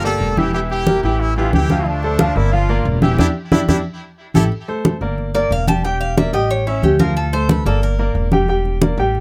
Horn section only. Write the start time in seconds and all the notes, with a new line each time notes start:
0.05 F4 A4
0.37 E4 G4
0.54 E4 G4
0.71 E4 G4
1.04 E4 G4
1.21 C#4 E4
1.37 D4 F4
1.54 E4 G4
1.87 A3 D4
2.36 C4 E4
2.53 D4 F4
3.02 E4 G4
3.19 D4 E4 G4
3.52 D4 E4 G4
3.69 D4 E4 G4
4.35 E4 G4 A4